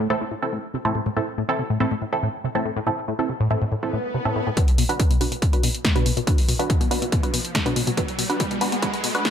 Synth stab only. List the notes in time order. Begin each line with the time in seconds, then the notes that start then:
0.10 C4 E4 A4
0.42 C4 E4 A4
0.85 C4 E4 A4
1.17 C4 E4 A4
1.49 C4 E4 A4
1.80 C4 E4 A4
2.13 C4 E4 A4
2.55 C4 E4 A4
2.87 C4 E4 A4
3.19 C4 E4 A4
3.51 C4 E4 A4
3.83 C4 E4 A4
4.25 C4 E4 A4
4.57 D4 F#4 B4
4.89 D4 F#4 B4
5.21 D4 F#4 B4
5.53 D4 F#4 B4
5.96 D4 F#4 B4
6.27 D4 F#4 B4
6.59 D4 F#4 B4
6.91 D4 F#4 B4
7.23 D4 F#4 B4
7.66 D4 F#4 B4
7.97 D4 F#4 B4
8.30 D4 F#4 B4
8.61 D4 F#4 B4
8.82 D4 F#4 B4
9.15 D4 F#4 B4